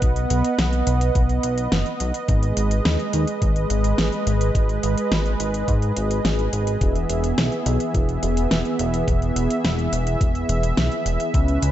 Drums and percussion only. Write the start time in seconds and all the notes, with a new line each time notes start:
0.02 kick, closed hi-hat
0.16 closed hi-hat
0.30 closed hi-hat
0.44 closed hi-hat
0.59 snare, closed hi-hat
0.73 closed hi-hat
0.87 closed hi-hat
1.01 closed hi-hat
1.15 kick, closed hi-hat
1.29 closed hi-hat
1.43 closed hi-hat
1.58 closed hi-hat
1.72 snare, closed hi-hat
1.86 closed hi-hat
2.00 closed hi-hat
2.14 closed hi-hat
2.28 kick, closed hi-hat
2.43 closed hi-hat
2.57 closed hi-hat
2.71 closed hi-hat
2.85 snare, closed hi-hat
2.99 closed hi-hat
3.13 closed hi-hat
3.28 closed hi-hat
3.42 kick, closed hi-hat
3.56 closed hi-hat
3.70 closed hi-hat
3.84 closed hi-hat
3.98 snare, closed hi-hat
4.13 closed hi-hat
4.27 closed hi-hat
4.41 closed hi-hat
4.55 kick, closed hi-hat
4.69 closed hi-hat
4.83 closed hi-hat
4.98 closed hi-hat
5.12 snare, closed hi-hat
5.26 closed hi-hat
5.40 closed hi-hat
5.54 closed hi-hat
5.68 kick, closed hi-hat
5.82 closed hi-hat
5.97 closed hi-hat
6.11 closed hi-hat
6.25 snare, closed hi-hat
6.39 closed hi-hat
6.53 closed hi-hat
6.67 closed hi-hat
6.81 kick, closed hi-hat
6.95 closed hi-hat
7.10 closed hi-hat
7.24 closed hi-hat
7.38 snare, closed hi-hat
7.52 closed hi-hat
7.66 closed hi-hat
7.80 closed hi-hat
7.94 kick, closed hi-hat
8.09 closed hi-hat
8.23 closed hi-hat
8.37 closed hi-hat
8.51 snare, closed hi-hat
8.65 closed hi-hat
8.79 closed hi-hat
8.94 closed hi-hat
9.08 kick, closed hi-hat
9.22 closed hi-hat
9.36 closed hi-hat
9.50 closed hi-hat
9.65 snare, closed hi-hat
9.79 closed hi-hat
9.93 closed hi-hat
10.07 closed hi-hat
10.21 kick, closed hi-hat
10.35 closed hi-hat
10.49 closed hi-hat
10.63 closed hi-hat
10.77 snare, closed hi-hat
10.92 closed hi-hat
11.06 closed hi-hat
11.20 closed hi-hat
11.34 kick, closed hi-hat
11.48 closed hi-hat
11.62 closed hi-hat